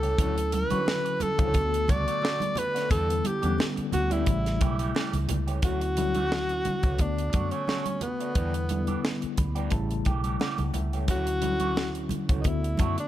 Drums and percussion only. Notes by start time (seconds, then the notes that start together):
0.03 closed hi-hat
0.18 kick, closed hi-hat, muted conga
0.38 closed hi-hat
0.52 closed hi-hat, muted conga, high conga
0.70 closed hi-hat, high conga
0.86 snare, muted conga
1.06 closed hi-hat
1.20 closed hi-hat, muted conga, high conga, low conga
1.39 kick, closed hi-hat
1.54 kick, closed hi-hat, muted conga
1.74 closed hi-hat
1.88 kick, closed hi-hat, high conga
2.08 closed hi-hat
2.22 snare, muted conga
2.40 closed hi-hat, high conga
2.55 closed hi-hat, muted conga, low conga
2.76 snare, closed hi-hat
2.90 kick, closed hi-hat, muted conga, low conga
3.10 closed hi-hat
3.24 closed hi-hat, high conga
3.43 closed hi-hat, high conga
3.58 snare, muted conga
3.77 closed hi-hat
3.92 closed hi-hat, muted conga, high conga, low conga
4.11 closed hi-hat
4.26 kick, closed hi-hat, muted conga
4.46 snare, closed hi-hat
4.61 kick, closed hi-hat, muted conga, high conga
4.79 closed hi-hat
4.95 snare, muted conga
5.13 closed hi-hat, high conga
5.29 closed hi-hat, muted conga, low conga
5.48 closed hi-hat
5.62 kick, closed hi-hat, muted conga
5.81 closed hi-hat
5.97 closed hi-hat, muted conga, high conga
6.15 closed hi-hat, high conga
6.32 snare
6.49 closed hi-hat
6.65 closed hi-hat, muted conga, high conga, low conga
6.83 kick, closed hi-hat
6.99 kick, closed hi-hat, muted conga
7.18 closed hi-hat
7.33 kick, closed hi-hat, high conga
7.51 closed hi-hat
7.67 snare, muted conga, high conga
7.86 closed hi-hat, high conga
8.01 closed hi-hat, muted conga, low conga
8.20 closed hi-hat
8.35 kick, closed hi-hat, muted conga
8.54 closed hi-hat
8.69 closed hi-hat, muted conga, high conga
8.87 closed hi-hat, high conga
9.04 snare, muted conga
9.22 closed hi-hat
9.37 kick, closed hi-hat, high conga, low conga
9.56 closed hi-hat
9.71 kick, closed hi-hat
9.91 closed hi-hat
10.05 kick, closed hi-hat, high conga
10.24 closed hi-hat
10.40 snare, muted conga, high conga
10.58 closed hi-hat, high conga
10.74 closed hi-hat, muted conga, low conga
10.93 closed hi-hat
11.08 kick, closed hi-hat
11.27 closed hi-hat
11.42 closed hi-hat, muted conga, high conga
11.60 closed hi-hat, high conga
11.76 snare, muted conga
11.95 closed hi-hat
12.09 closed hi-hat, muted conga, high conga, low conga
12.29 kick, closed hi-hat
12.44 kick, closed hi-hat
12.64 closed hi-hat
12.77 kick, closed hi-hat, muted conga, high conga
12.98 closed hi-hat